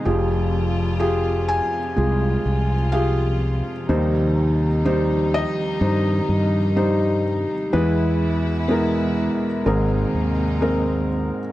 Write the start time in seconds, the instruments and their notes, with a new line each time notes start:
Already playing: string section C3
0.05 felt piano F1 F2 F4 G4 G#4, fretless electric bass F1, string section F3 F4
1.00 felt piano F4 G4 G#4
1.49 felt piano G#5
1.96 fretless electric bass C2, felt piano G#3 F4 G#4, string section F4
2.46 fretless electric bass C2
2.92 felt piano F4 G4 G#4 F5
3.89 felt piano D#2 D#3 G3 D#4 C5, fretless electric bass D#2, string section D#3 D#4
4.85 felt piano G3 D#4 C5
5.34 felt piano G4 D#5
5.81 fretless electric bass G2, felt piano G3 D#4 C5
6.29 fretless electric bass G2
6.76 felt piano G3 D#4 C5
7.73 felt piano E2 E3 G#3 E4 G#4 B4, fretless electric bass E2, string section B2 E3 G#3 E4
8.68 felt piano G#3 B3 E4 A#4
9.65 felt piano G#1 G#2 G#3 C4 G#4 A#4, fretless electric bass G#1, string section C3 A#3 D#4
10.15 fretless electric bass D#2
10.61 felt piano G#3 C4 A#4